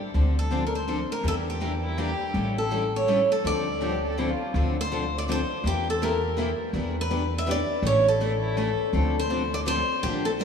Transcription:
0.14 D2 D3 F3 C4 D4 A4
0.39 A4
0.51 D3 F3 C4 D4 A4
0.67 A#4
0.75 C5
0.88 D3 F3 C4 D4 A4
1.12 A#4
1.24 E2 E3 G3 A#3 D4 E4 G4 A#4
1.28 A4
1.50 G4
1.60 E3 G3 A#3 D4 E4 G4 A#4
1.83 E4
1.98 E3 G3 A#3 D4 E4 G4 A#4
2.34 A1 E3 G3 C#4 E4 A4
2.58 A4
2.71 E3 G3 C#4 E4 A4
2.96 C#5
3.08 E3 G3 C#4 E4 A4
3.32 A4
3.44 D2 D3 F3 C4 D4 A4 D5
3.81 D3 F3 C4 D4 G4 A4
4.04 A4
4.18 D3 F3 C4 D4 E4 A4
4.29 F4
4.54 D2 D3 F3 C4 D4 A4
4.81 C5
4.92 D3 F3 C4 D4 A4
5.18 D5
5.28 D3 F3 C4 D4 A4 C5
5.64 E2 E3 A#3 E4 G4
5.90 A4
6.02 E3 A#3 E4 G4 A#4
6.37 E3 A#3 E4 G4
6.73 E2 E3 G3 B3 D4 E4 G4 B4
7.01 B4
7.11 E3 G3 B3 D4 E4 G4 B4
7.38 E5
7.46 E3 G3 B3 D4 E4 G4 B4
7.51 D5
7.82 A1 E3 A3 C#4 E4 A4
7.87 C#5
8.08 A4
8.21 E3 A3 C#4 E4 A4
8.42 E4
8.57 E3 A3 C#4 E4 A4
8.93 D2 D3 F3 C4 D4 A4
9.19 C5
9.30 D3 F3 C4 D4 A4
9.54 D5
9.66 D3 F3 C4 D4 A4 C5
10.03 A#1 D3 F3 A#3 D4 G4
10.25 A4
10.39 D3 F3 A#3 D4 G4 A#4

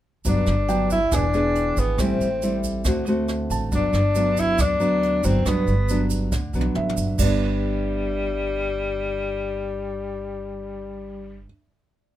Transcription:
0.25 G1 G2 F#3 B3 D4, kick, closed hi-hat, shaker
0.46 G1, cross-stick, closed hi-hat, shaker
0.68 F#3 B3 D4 G5, closed hi-hat, shaker
0.90 E4, kick, closed hi-hat, shaker
1.12 E1 E3 B3 D4 G#4 G#5, kick, cross-stick, closed hi-hat, shaker
1.33 B3 D4 G#4, closed hi-hat, shaker
1.55 closed hi-hat
1.77 G#1 B3, kick, closed hi-hat, shaker
1.98 A1 A2 G3 C4 E4, kick, cross-stick, closed hi-hat, shaker
2.20 A1, closed hi-hat, shaker
2.42 G3 C4 E4, closed hi-hat, shaker
2.64 kick, closed hi-hat, shaker
2.85 D2 D3 A3 C4 F#4, kick, cross-stick, closed hi-hat, shaker
3.06 A3 C4 F#4, closed hi-hat, shaker
3.28 cross-stick, closed hi-hat, shaker
3.50 A1 A5, kick, closed hi-hat, shaker
3.72 G1 G2 F#3 B3 D4, kick, closed hi-hat, shaker
3.93 G1, cross-stick, closed hi-hat, shaker
4.15 F#3 B3 D4, closed hi-hat, shaker
4.37 E4, kick, closed hi-hat, shaker
4.58 D2 D3 D4, kick, cross-stick, closed hi-hat, shaker
4.80 F#3 B3 D4, closed hi-hat, shaker
5.03 closed hi-hat
5.24 G1 F#3 B3 C4 D4, kick, closed hi-hat, shaker
5.46 G1 G2 F#3 B3 D4, kick, cross-stick, closed hi-hat, shaker
5.67 G1, closed hi-hat, shaker
5.89 F#3 B3 D4, closed hi-hat, shaker
6.10 kick, closed hi-hat, shaker
6.32 D2 D3, kick, snare, shaker
6.53 B1 F#3 B3 D4, shaker
6.61 high tom
6.75 A1 E5, mid tom
6.89 mid tom
6.97 G1, shaker
7.18 G1 G2 G3 D5, kick, crash, shaker
7.22 B3 D4

